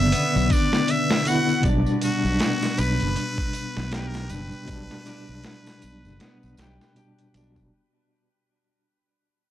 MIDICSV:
0, 0, Header, 1, 7, 480
1, 0, Start_track
1, 0, Tempo, 759494
1, 1042, Time_signature, 4, 2, 24, 8
1, 6005, End_track
2, 0, Start_track
2, 0, Title_t, "Muted trumpet"
2, 0, Program_c, 0, 59
2, 0, Note_on_c, 0, 76, 112
2, 329, Note_on_c, 0, 74, 93
2, 338, Note_off_c, 0, 76, 0
2, 573, Note_on_c, 0, 76, 108
2, 583, Note_off_c, 0, 74, 0
2, 808, Note_on_c, 0, 78, 115
2, 818, Note_off_c, 0, 76, 0
2, 1045, Note_off_c, 0, 78, 0
2, 1287, Note_on_c, 0, 66, 104
2, 1766, Note_on_c, 0, 71, 127
2, 1775, Note_off_c, 0, 66, 0
2, 2484, Note_off_c, 0, 71, 0
2, 2487, Note_on_c, 0, 70, 106
2, 2528, Note_on_c, 0, 71, 94
2, 2538, Note_off_c, 0, 70, 0
2, 2575, Note_on_c, 0, 70, 107
2, 2584, Note_off_c, 0, 71, 0
2, 2720, Note_on_c, 0, 71, 118
2, 2729, Note_off_c, 0, 70, 0
2, 4401, Note_off_c, 0, 71, 0
2, 6005, End_track
3, 0, Start_track
3, 0, Title_t, "Clean electric guitar"
3, 0, Program_c, 1, 27
3, 77, Note_on_c, 1, 59, 85
3, 299, Note_off_c, 1, 59, 0
3, 318, Note_on_c, 1, 62, 79
3, 780, Note_off_c, 1, 62, 0
3, 799, Note_on_c, 1, 66, 83
3, 1020, Note_off_c, 1, 66, 0
3, 1037, Note_on_c, 1, 74, 77
3, 1193, Note_off_c, 1, 74, 0
3, 1756, Note_on_c, 1, 71, 76
3, 1989, Note_off_c, 1, 71, 0
3, 2477, Note_on_c, 1, 67, 73
3, 3179, Note_off_c, 1, 67, 0
3, 3198, Note_on_c, 1, 62, 97
3, 3353, Note_off_c, 1, 62, 0
3, 3919, Note_on_c, 1, 59, 85
3, 4140, Note_off_c, 1, 59, 0
3, 4167, Note_on_c, 1, 67, 81
3, 4394, Note_off_c, 1, 67, 0
3, 4405, Note_on_c, 1, 67, 75
3, 4633, Note_off_c, 1, 67, 0
3, 4648, Note_on_c, 1, 62, 82
3, 4798, Note_off_c, 1, 62, 0
3, 6005, End_track
4, 0, Start_track
4, 0, Title_t, "String machine"
4, 0, Program_c, 2, 50
4, 0, Note_on_c, 2, 59, 90
4, 4894, Note_off_c, 2, 59, 0
4, 6005, End_track
5, 0, Start_track
5, 0, Title_t, "Tine electric piano"
5, 0, Program_c, 3, 4
5, 0, Control_c, 3, 64, 127
5, 0, Note_on_c, 3, 50, 106
5, 0, Note_on_c, 3, 59, 92
5, 0, Note_on_c, 3, 74, 117
5, 769, Note_off_c, 3, 50, 0
5, 780, Note_off_c, 3, 59, 0
5, 793, Note_off_c, 3, 74, 0
5, 795, Note_on_c, 3, 50, 89
5, 808, Note_on_c, 3, 59, 87
5, 822, Note_on_c, 3, 64, 99
5, 1014, Note_off_c, 3, 50, 0
5, 1020, Note_off_c, 3, 59, 0
5, 1020, Note_on_c, 3, 47, 103
5, 1028, Note_off_c, 3, 64, 0
5, 1045, Note_on_c, 3, 55, 92
5, 1049, Control_c, 3, 64, 0
5, 1068, Note_on_c, 3, 62, 114
5, 1163, Control_c, 3, 64, 127
5, 2687, Note_off_c, 3, 47, 0
5, 2699, Note_off_c, 3, 55, 0
5, 2711, Note_off_c, 3, 62, 0
5, 2716, Note_on_c, 3, 47, 86
5, 2728, Note_on_c, 3, 55, 77
5, 2741, Note_on_c, 3, 62, 95
5, 2931, Note_off_c, 3, 47, 0
5, 2938, Note_on_c, 3, 47, 103
5, 2941, Note_off_c, 3, 55, 0
5, 2947, Note_off_c, 3, 62, 0
5, 2962, Note_on_c, 3, 55, 91
5, 2987, Note_on_c, 3, 62, 114
5, 4370, Note_off_c, 3, 47, 0
5, 4382, Note_off_c, 3, 55, 0
5, 4390, Note_on_c, 3, 47, 101
5, 4394, Note_off_c, 3, 62, 0
5, 4405, Note_on_c, 3, 55, 91
5, 4418, Note_on_c, 3, 62, 104
5, 4612, Note_off_c, 3, 47, 0
5, 4619, Note_off_c, 3, 55, 0
5, 4626, Note_off_c, 3, 62, 0
5, 4630, Note_on_c, 3, 47, 90
5, 4643, Note_on_c, 3, 55, 87
5, 4655, Note_on_c, 3, 62, 98
5, 4845, Note_off_c, 3, 47, 0
5, 4852, Note_off_c, 3, 55, 0
5, 4858, Note_off_c, 3, 62, 0
5, 4889, Control_c, 3, 64, 0
5, 6005, End_track
6, 0, Start_track
6, 0, Title_t, "Fingered electric bass"
6, 0, Program_c, 4, 33
6, 0, Note_on_c, 4, 30, 87
6, 75, Note_off_c, 4, 30, 0
6, 226, Note_on_c, 4, 35, 83
6, 312, Note_off_c, 4, 35, 0
6, 1038, Note_on_c, 4, 35, 109
6, 1163, Note_off_c, 4, 35, 0
6, 1418, Note_on_c, 4, 35, 98
6, 1508, Note_off_c, 4, 35, 0
6, 1762, Note_on_c, 4, 35, 86
6, 1884, Note_off_c, 4, 35, 0
6, 1901, Note_on_c, 4, 30, 81
6, 1990, Note_off_c, 4, 30, 0
6, 2383, Note_on_c, 4, 35, 86
6, 2704, Note_off_c, 4, 35, 0
6, 2722, Note_on_c, 4, 30, 87
6, 2845, Note_off_c, 4, 30, 0
6, 2959, Note_on_c, 4, 35, 99
6, 3083, Note_off_c, 4, 35, 0
6, 3343, Note_on_c, 4, 35, 100
6, 3431, Note_off_c, 4, 35, 0
6, 3688, Note_on_c, 4, 35, 82
6, 3808, Note_off_c, 4, 35, 0
6, 3823, Note_on_c, 4, 30, 82
6, 3911, Note_off_c, 4, 30, 0
6, 4067, Note_on_c, 4, 35, 83
6, 4153, Note_off_c, 4, 35, 0
6, 4158, Note_on_c, 4, 35, 108
6, 4283, Note_off_c, 4, 35, 0
6, 4644, Note_on_c, 4, 35, 107
6, 4859, Note_off_c, 4, 35, 0
6, 6005, End_track
7, 0, Start_track
7, 0, Title_t, "Drums"
7, 77, Note_on_c, 9, 42, 84
7, 93, Note_on_c, 9, 54, 50
7, 141, Note_off_c, 9, 42, 0
7, 156, Note_off_c, 9, 54, 0
7, 227, Note_on_c, 9, 54, 39
7, 290, Note_off_c, 9, 54, 0
7, 316, Note_on_c, 9, 42, 64
7, 319, Note_on_c, 9, 36, 96
7, 331, Note_on_c, 9, 54, 91
7, 379, Note_off_c, 9, 42, 0
7, 382, Note_off_c, 9, 36, 0
7, 394, Note_off_c, 9, 54, 0
7, 461, Note_on_c, 9, 38, 58
7, 466, Note_on_c, 9, 54, 36
7, 524, Note_off_c, 9, 38, 0
7, 529, Note_off_c, 9, 54, 0
7, 557, Note_on_c, 9, 42, 89
7, 569, Note_on_c, 9, 54, 49
7, 620, Note_off_c, 9, 42, 0
7, 632, Note_off_c, 9, 54, 0
7, 698, Note_on_c, 9, 38, 118
7, 706, Note_on_c, 9, 54, 31
7, 762, Note_off_c, 9, 38, 0
7, 770, Note_off_c, 9, 54, 0
7, 793, Note_on_c, 9, 42, 68
7, 803, Note_on_c, 9, 54, 79
7, 856, Note_off_c, 9, 42, 0
7, 866, Note_off_c, 9, 54, 0
7, 939, Note_on_c, 9, 54, 40
7, 1002, Note_off_c, 9, 54, 0
7, 1031, Note_on_c, 9, 42, 86
7, 1036, Note_on_c, 9, 36, 115
7, 1044, Note_on_c, 9, 54, 45
7, 1094, Note_off_c, 9, 42, 0
7, 1099, Note_off_c, 9, 36, 0
7, 1107, Note_off_c, 9, 54, 0
7, 1178, Note_on_c, 9, 54, 37
7, 1241, Note_off_c, 9, 54, 0
7, 1273, Note_on_c, 9, 42, 70
7, 1280, Note_on_c, 9, 54, 88
7, 1337, Note_off_c, 9, 42, 0
7, 1343, Note_off_c, 9, 54, 0
7, 1422, Note_on_c, 9, 54, 37
7, 1486, Note_off_c, 9, 54, 0
7, 1513, Note_on_c, 9, 42, 87
7, 1520, Note_on_c, 9, 38, 118
7, 1523, Note_on_c, 9, 54, 53
7, 1577, Note_off_c, 9, 42, 0
7, 1583, Note_off_c, 9, 38, 0
7, 1586, Note_off_c, 9, 54, 0
7, 1658, Note_on_c, 9, 81, 72
7, 1662, Note_on_c, 9, 38, 53
7, 1721, Note_off_c, 9, 81, 0
7, 1725, Note_off_c, 9, 38, 0
7, 1759, Note_on_c, 9, 42, 70
7, 1760, Note_on_c, 9, 54, 98
7, 1822, Note_off_c, 9, 42, 0
7, 1823, Note_off_c, 9, 54, 0
7, 1896, Note_on_c, 9, 42, 45
7, 1896, Note_on_c, 9, 54, 35
7, 1959, Note_off_c, 9, 42, 0
7, 1960, Note_off_c, 9, 54, 0
7, 1998, Note_on_c, 9, 42, 90
7, 1999, Note_on_c, 9, 54, 46
7, 2061, Note_off_c, 9, 42, 0
7, 2062, Note_off_c, 9, 54, 0
7, 2136, Note_on_c, 9, 36, 94
7, 2140, Note_on_c, 9, 54, 37
7, 2199, Note_off_c, 9, 36, 0
7, 2203, Note_off_c, 9, 54, 0
7, 2233, Note_on_c, 9, 42, 68
7, 2241, Note_on_c, 9, 54, 87
7, 2297, Note_off_c, 9, 42, 0
7, 2304, Note_off_c, 9, 54, 0
7, 2378, Note_on_c, 9, 54, 33
7, 2381, Note_on_c, 9, 38, 44
7, 2441, Note_off_c, 9, 54, 0
7, 2444, Note_off_c, 9, 38, 0
7, 2475, Note_on_c, 9, 42, 83
7, 2478, Note_on_c, 9, 54, 51
7, 2481, Note_on_c, 9, 38, 122
7, 2538, Note_off_c, 9, 42, 0
7, 2541, Note_off_c, 9, 54, 0
7, 2544, Note_off_c, 9, 38, 0
7, 2615, Note_on_c, 9, 54, 39
7, 2618, Note_on_c, 9, 81, 74
7, 2622, Note_on_c, 9, 38, 57
7, 2678, Note_off_c, 9, 54, 0
7, 2681, Note_off_c, 9, 81, 0
7, 2685, Note_off_c, 9, 38, 0
7, 2715, Note_on_c, 9, 42, 65
7, 2716, Note_on_c, 9, 54, 89
7, 2778, Note_off_c, 9, 42, 0
7, 2779, Note_off_c, 9, 54, 0
7, 2856, Note_on_c, 9, 54, 41
7, 2919, Note_off_c, 9, 54, 0
7, 2954, Note_on_c, 9, 42, 86
7, 2958, Note_on_c, 9, 36, 110
7, 2960, Note_on_c, 9, 54, 52
7, 3018, Note_off_c, 9, 42, 0
7, 3021, Note_off_c, 9, 36, 0
7, 3023, Note_off_c, 9, 54, 0
7, 3102, Note_on_c, 9, 54, 35
7, 3103, Note_on_c, 9, 38, 60
7, 3165, Note_off_c, 9, 54, 0
7, 3166, Note_off_c, 9, 38, 0
7, 3194, Note_on_c, 9, 81, 59
7, 3197, Note_on_c, 9, 42, 67
7, 3202, Note_on_c, 9, 54, 79
7, 3204, Note_on_c, 9, 38, 40
7, 3257, Note_off_c, 9, 81, 0
7, 3260, Note_off_c, 9, 42, 0
7, 3266, Note_off_c, 9, 54, 0
7, 3267, Note_off_c, 9, 38, 0
7, 3335, Note_on_c, 9, 54, 35
7, 3398, Note_off_c, 9, 54, 0
7, 3432, Note_on_c, 9, 54, 55
7, 3435, Note_on_c, 9, 42, 85
7, 3441, Note_on_c, 9, 38, 120
7, 3495, Note_off_c, 9, 54, 0
7, 3498, Note_off_c, 9, 42, 0
7, 3505, Note_off_c, 9, 38, 0
7, 3582, Note_on_c, 9, 54, 35
7, 3582, Note_on_c, 9, 81, 83
7, 3585, Note_on_c, 9, 38, 53
7, 3645, Note_off_c, 9, 54, 0
7, 3645, Note_off_c, 9, 81, 0
7, 3649, Note_off_c, 9, 38, 0
7, 3677, Note_on_c, 9, 54, 94
7, 3678, Note_on_c, 9, 42, 67
7, 3740, Note_off_c, 9, 54, 0
7, 3741, Note_off_c, 9, 42, 0
7, 3823, Note_on_c, 9, 54, 40
7, 3886, Note_off_c, 9, 54, 0
7, 3919, Note_on_c, 9, 42, 76
7, 3919, Note_on_c, 9, 54, 45
7, 3925, Note_on_c, 9, 38, 105
7, 3982, Note_off_c, 9, 42, 0
7, 3982, Note_off_c, 9, 54, 0
7, 3988, Note_off_c, 9, 38, 0
7, 4063, Note_on_c, 9, 54, 39
7, 4127, Note_off_c, 9, 54, 0
7, 4155, Note_on_c, 9, 54, 88
7, 4161, Note_on_c, 9, 42, 82
7, 4167, Note_on_c, 9, 38, 99
7, 4218, Note_off_c, 9, 54, 0
7, 4224, Note_off_c, 9, 42, 0
7, 4230, Note_off_c, 9, 38, 0
7, 4305, Note_on_c, 9, 54, 37
7, 4307, Note_on_c, 9, 38, 50
7, 4369, Note_off_c, 9, 54, 0
7, 4370, Note_off_c, 9, 38, 0
7, 4400, Note_on_c, 9, 42, 57
7, 4401, Note_on_c, 9, 54, 50
7, 4463, Note_off_c, 9, 42, 0
7, 4464, Note_off_c, 9, 54, 0
7, 4541, Note_on_c, 9, 42, 41
7, 4545, Note_on_c, 9, 54, 36
7, 4605, Note_off_c, 9, 42, 0
7, 4609, Note_off_c, 9, 54, 0
7, 4640, Note_on_c, 9, 42, 79
7, 4651, Note_on_c, 9, 54, 87
7, 4704, Note_off_c, 9, 42, 0
7, 4714, Note_off_c, 9, 54, 0
7, 4778, Note_on_c, 9, 54, 37
7, 4780, Note_on_c, 9, 36, 87
7, 4842, Note_off_c, 9, 54, 0
7, 4843, Note_off_c, 9, 36, 0
7, 6005, End_track
0, 0, End_of_file